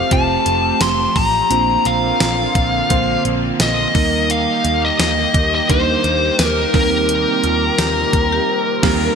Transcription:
Already playing: analog synth pad F3 A3 C4 G4, tine electric piano A3 C4 F4 G4 C5, distorted electric guitar C4 F4, lead electric guitar F5
0.10 picked electric bass F1, distorted electric guitar F3 C4 F4, tine electric piano A3 C4 F4 G4 C5, lead electric guitar A5, kick, closed hi-hat
0.45 picked electric bass F1, distorted electric guitar C4 F4, closed hi-hat
0.81 picked electric bass F1, lead electric guitar C6, snare, closed hi-hat, tambourine
1.16 picked electric bass A1, lead electric guitar A#5, kick, open hi-hat
1.49 picked electric bass A#1, distorted electric guitar A#2 F3, analog synth pad D3 A#3 F4, tine electric piano A#3 C4 D4 F4 C5, closed hi-hat
1.54 distorted electric guitar A#3
1.85 picked electric bass A#1, lead electric guitar F5, closed hi-hat
2.20 picked electric bass A#1, snare, closed hi-hat, tambourine
2.55 picked electric bass A#1, kick, closed hi-hat
2.89 picked electric bass A#1, distorted electric guitar A#2 F3 A#3, tine electric piano D3 A#3 C4 F4 C5, kick, closed hi-hat
3.24 picked electric bass A#1, distorted electric guitar F3 A#3, closed hi-hat
3.60 picked electric bass A#1, lead electric guitar D#5, snare, closed hi-hat, tambourine
3.94 picked electric bass D#2, analog synth pad D#3 G4, tine electric piano G3 A#3 D#4 A#4, distorted electric guitar A#3 D#4, kick, open hi-hat
3.99 distorted electric guitar D#3
4.30 lead electric guitar F5, closed hi-hat
4.65 picked electric bass D#2, closed hi-hat
4.85 lead electric guitar D#5
5.00 picked electric bass D#2, snare, closed hi-hat, tambourine
5.34 picked electric bass D#2, kick, closed hi-hat
5.55 lead electric guitar D#5
5.68 picked electric bass D#2, distorted electric guitar D#3 A#3 D#4, tine electric piano G3 A#3 D4 D#4 A#4, lead electric guitar C5, kick, closed hi-hat
6.03 picked electric bass D#2, distorted electric guitar A#3 D#4, closed hi-hat
6.39 picked electric bass D#2, snare, closed hi-hat, tambourine
6.46 lead electric guitar A#4
6.73 picked electric bass D#2, analog synth pad D#3 C4, tine electric piano G3 A#3 C4 D#4 A#4, distorted electric guitar G3 C4, lead electric guitar A#4, kick, open hi-hat
6.78 distorted electric guitar C3
7.09 closed hi-hat
7.44 picked electric bass D#2, marimba F4, closed hi-hat
7.78 picked electric bass D#2, marimba G4, snare, closed hi-hat, tambourine
8.13 picked electric bass D#2, kick, closed hi-hat
8.32 marimba G4
8.82 picked electric bass D#2, tine electric piano G3 A#3 C4 D#4 A#4, distorted electric guitar G3 C4, kick, snare, crash

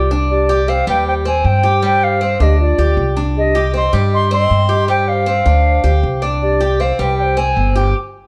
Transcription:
Already playing: upright bass C2, bansuri F4, flute D5
0.11 cuban tres D4
0.30 bansuri G4, flute D5
0.49 cuban tres G4
0.68 cuban tres C4, bansuri C5, flute F5
0.87 upright bass D#2, cuban tres G3, bansuri B4, flute G5
1.07 bansuri C5, flute G5
1.25 cuban tres C4, bansuri C5, flute G#5
1.44 upright bass G2, bansuri C5, flute G5
1.63 cuban tres G4
1.82 cuban tres G3, bansuri D5, flute G5
1.88 bansuri C5
2.03 bansuri C5, flute F5
2.21 cuban tres C4
2.40 upright bass D2, cuban tres D4, bansuri G4, flute D#5
2.60 bansuri F4, flute D5
2.78 upright bass D2, cuban tres G4
2.97 upright bass C2
3.17 cuban tres D4
3.37 bansuri G#4, flute D#5
3.41 bansuri G4
3.55 cuban tres G4
3.74 cuban tres C4, bansuri D#5, flute C6
3.93 upright bass G2, cuban tres G3
4.13 bansuri D#5, flute C6
4.31 cuban tres C4, bansuri D#5, flute C6
4.50 upright bass G2
4.69 cuban tres G4
4.88 cuban tres G3, bansuri C5, flute G5
5.08 bansuri D5, flute F5
5.13 bansuri C5
5.26 cuban tres C4
5.46 upright bass D2, cuban tres D4
5.84 upright bass D2, cuban tres G4
6.03 upright bass C2
6.22 cuban tres D4
6.42 bansuri G4, flute D5
6.60 cuban tres G4
6.80 cuban tres C4, bansuri C5, flute F5
6.99 upright bass C2, cuban tres G3, bansuri B4, flute G5
7.18 bansuri D5, flute G5
7.23 bansuri C5
7.37 cuban tres C4, bansuri C5, flute G#5
7.56 upright bass G1
7.76 cuban tres G4, bansuri C5, flute G5

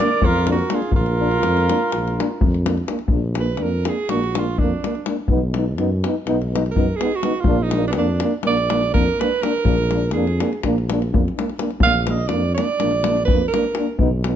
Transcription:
Already playing: alto saxophone A#4, flugelhorn D5
0.00 euphonium A#3, davul high
0.22 tuba F2, alto saxophone F4, flugelhorn A#4, davul low
0.47 euphonium A#3 D4, flugelhorn A#4, davul high
0.52 alto saxophone F#4
0.59 davul high
0.70 euphonium A#3 D4, flugelhorn G#4, davul high
0.74 alto saxophone F4
0.82 davul high
0.92 tuba A#1, flugelhorn A#4, davul low
0.96 alto saxophone F4
1.06 davul high
1.19 euphonium A#3 D4
1.31 davul high
1.43 tuba F2, davul high
1.57 davul high
1.69 euphonium A#3 D4, davul high
1.92 tuba A#1, davul high
2.08 davul high
2.17 euphonium A#3 D4, davul high
2.41 tuba F2, davul low
2.54 davul high
2.66 euphonium A#3 D4, davul high
2.77 davul high
2.88 euphonium A#3 D4, davul high
2.99 davul high
3.08 tuba A#1, euphonium A#3 D4, davul low
3.35 euphonium A#3 D4, davul high
3.40 alto saxophone B4
3.57 euphonium D4, davul high
3.62 tuba F2, euphonium A#3, alto saxophone A#4
3.85 euphonium A#3 D4, alto saxophone G#4, davul high
4.09 tuba A#1, euphonium A#3 D4, alto saxophone F#4, davul high
4.24 davul high
4.35 euphonium A#3 D4, alto saxophone F4, davul high
4.58 tuba F2, euphonium A#3 D4, alto saxophone D4, davul low
4.84 euphonium A#3 D4, davul high
4.95 davul high
5.06 euphonium A#3 D4, davul high
5.28 tuba B1, euphonium B3 D#4, davul low
5.54 euphonium B3 D#4, davul high
5.77 tuba F#2, euphonium B3 D#4, davul high
6.04 euphonium B3 D#4, davul high
6.26 tuba B1, euphonium B3 D#4, davul high
6.42 davul high
6.53 euphonium B3 D#4, davul high
6.66 davul high
6.71 alto saxophone A#4
6.75 tuba F#2, euphonium B3 D#4, davul low
6.96 alto saxophone G#4
7.01 euphonium B3 D#4, davul high
7.12 alto saxophone F#4, davul high
7.23 euphonium B3 D#4, davul high
7.40 alto saxophone F4, davul low
7.46 tuba A#1, euphonium A#3 D4
7.63 alto saxophone D#4
7.71 davul high
7.75 euphonium A#3 D4
7.88 alto saxophone B3 D4
7.93 euphonium A#3 D4, davul high
7.98 tuba F2, alto saxophone D4
8.20 euphonium A#3 D4, davul high
8.43 tuba A#1, euphonium A#3, alto saxophone D5, davul high
8.47 euphonium D4
8.57 davul high
8.70 euphonium A#3 D4, davul high
8.83 davul high
8.92 tuba F2, euphonium A#3 D4, alto saxophone A#4, davul low
9.19 euphonium A#3 D4, alto saxophone B4, davul high
9.41 euphonium A#3 D4, alto saxophone A#4, davul high
9.64 tuba A#1, euphonium A#3 D4, davul low
9.78 davul high
9.91 euphonium A#3 D4, davul high
10.11 tuba F2, euphonium A#3 D4, alto saxophone G#4, davul high
10.27 davul high
10.40 euphonium A#3 D4, davul high
10.53 davul high
10.63 tuba A#1, euphonium A#3 D4, davul high, davul low
10.78 davul high
10.90 euphonium D4, davul high
10.94 euphonium A#3
11.02 davul high
11.12 tuba F2, euphonium A#3 D4, davul low
11.28 davul high
11.36 euphonium A#3 D4, davul high
11.49 davul high
11.59 euphonium A#3 D4, davul high
11.71 davul high
11.80 tuba A#1, euphonium A#3 D4, alto saxophone F5, davul low
12.04 alto saxophone F5, davul high
12.08 euphonium A#3 D4, alto saxophone D#5
12.28 euphonium A#3 D4, alto saxophone D5, davul high
12.32 tuba F2
12.54 euphonium A#3, alto saxophone D5, davul high
12.59 euphonium D4
12.80 tuba A#1, euphonium A#3 D4, davul high
12.91 davul high
13.04 euphonium A#3, davul high
13.10 euphonium D4
13.17 davul high
13.25 alto saxophone B4, davul low
13.31 tuba F2, euphonium A#3 D4
13.48 alto saxophone A#4
13.54 euphonium A#3 D4, davul high
13.64 davul high
13.75 euphonium D4, davul high
13.79 euphonium A#3
13.99 tuba B1, euphonium B3 D#4, davul low
14.24 euphonium B3 D#4, davul high

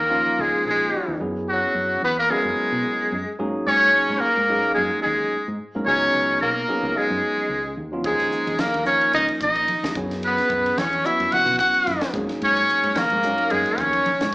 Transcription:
Already playing: tenor saxophone A#3, muted trumpet A#4
0.00 fingered electric bass D#2
0.10 tine electric piano F3 A#3 C#4 D#4 F4
0.39 fingered electric bass C#2, tenor saxophone G#3, muted trumpet G#4
0.54 muted fingered electric bass stroke
0.65 fingered electric bass A#1, muted trumpet G#4
0.70 tenor saxophone G#3
0.94 muted fingered electric bass stroke
1.08 fingered electric bass D#2
1.20 fingered electric bass F#2, tine electric piano F#3 B3 C#4 E4 G#4
1.49 tenor saxophone F#3, muted trumpet F#4
1.75 fingered electric bass F#2
2.02 fingered electric bass E2, tenor saxophone B3, muted trumpet B4
2.19 tenor saxophone A#3, muted trumpet A#4
2.29 tine electric piano F#3 B3 C#4 E4 A#4, tenor saxophone G#3, muted trumpet G#4
2.45 fingered electric bass F#2
2.72 fingered electric bass B2
2.99 muted fingered electric bass stroke
3.12 fingered electric bass F#2
3.39 fingered electric bass G#2, tine electric piano F#3 A#3 C#4 D#4 G#4
3.67 fingered electric bass G#2, tenor saxophone C#4, muted trumpet C#5
4.09 fingered electric bass G#2
4.19 tenor saxophone A#3, muted trumpet A#4, muted fingered electric bass stroke
4.37 fingered electric bass G#2
4.49 tine electric piano F#3 A#3 C#4 D#4 G#4
4.74 fingered electric bass F#2, tenor saxophone G#3, muted trumpet G#4
5.02 fingered electric bass D#2, tenor saxophone G#3, muted trumpet G#4
5.32 muted fingered electric bass stroke
5.48 fingered electric bass G#2
5.75 fingered electric bass G#2, tine electric piano F#3 A#3 C#4 D#4 A#4
5.86 fingered electric bass C#2, tine electric piano F#3 B3 C#4 D#4 G#4, tenor saxophone C#4, muted trumpet C#5
6.14 fingered electric bass C#2
6.41 fingered electric bass B1, tenor saxophone A#3, muted trumpet A#4
6.68 tine electric piano F#3 B3 C#4 D#4 G#4
6.83 fingered electric bass C#2
6.97 tenor saxophone G#3, muted trumpet G#4
7.10 fingered electric bass F#2
7.37 muted fingered electric bass stroke
7.49 fingered electric bass C#2
7.77 fingered electric bass D#2
7.92 tine electric piano F#3 B3 C#4 D#4 F4
8.04 fingered electric bass D#2, tine electric piano F3 A#3 C#4 D#4 G#4, tenor saxophone G#3, muted trumpet G#4, kick, ride, muted conga
8.20 snare, ride
8.32 hi-hat pedal, muted conga
8.47 fingered electric bass D#2, ride
8.59 tenor saxophone A#3, muted trumpet A#4, muted fingered electric bass stroke, snare, ride, high conga
8.74 fingered electric bass D#2, ride
8.85 tine electric piano F3 A#3 C#4 D#4 A#4, tenor saxophone C#4, muted trumpet C#5, hi-hat pedal, muted conga
9.01 ride
9.13 fingered electric bass C#2, tenor saxophone D#4, muted trumpet D#5, ride, muted conga
9.28 ride
9.41 fingered electric bass A#1, tenor saxophone D#4, muted trumpet D#5, kick, hi-hat pedal
9.56 kick, ride
9.68 muted fingered electric bass stroke, ride, high conga
9.83 fingered electric bass E2, snare, ride
9.95 fingered electric bass F#2, tine electric piano F#3 B3 C#4 E4 G#4, kick, hi-hat pedal
10.11 snare, ride
10.23 muted trumpet B4, ride, muted conga
10.27 tenor saxophone B3
10.38 snare, ride
10.50 fingered electric bass F#2, kick, hi-hat pedal, muted conga
10.66 ride
10.77 fingered electric bass E2, tenor saxophone C#4, muted trumpet C#5, snare, ride, high conga
10.93 ride
11.05 tine electric piano F#3 B3 C#4 E4 F#4, tenor saxophone E4, muted trumpet E5, hi-hat pedal, muted conga
11.20 fingered electric bass F#2, ride
11.31 tenor saxophone F#4, muted trumpet F#5, muted fingered electric bass stroke, ride, muted conga, high conga, low conga
11.45 fingered electric bass B2, ride
11.59 tenor saxophone F#4, muted trumpet F#5, kick, hi-hat pedal
11.74 muted fingered electric bass stroke, ride
11.87 fingered electric bass F#2, snare, ride, high conga
12.01 snare, ride
12.14 fingered electric bass G#2, tine electric piano F#3 A#3 C#4 D#4 G#4, kick, hi-hat pedal
12.29 snare, ride
12.42 fingered electric bass G#2, tenor saxophone C#4, muted trumpet C#5, ride, muted conga
12.57 ride
12.69 hi-hat pedal, muted conga
12.84 fingered electric bass G#2, ride
12.96 tenor saxophone A#3, muted trumpet A#4, muted fingered electric bass stroke, snare, ride, high conga
13.10 fingered electric bass G#2, ride
13.23 tine electric piano F#3 A#3 C#4 D#4 A#4, hi-hat pedal, muted conga
13.38 ride
13.50 fingered electric bass F#2, tenor saxophone G#3, muted trumpet G#4, ride, muted conga
13.66 ride
13.78 fingered electric bass D#2, tenor saxophone C#4, muted trumpet C#5, kick, hi-hat pedal, high conga
13.93 kick, ride
14.06 muted fingered electric bass stroke, ride, high conga
14.21 fingered electric bass G#2, snare, ride

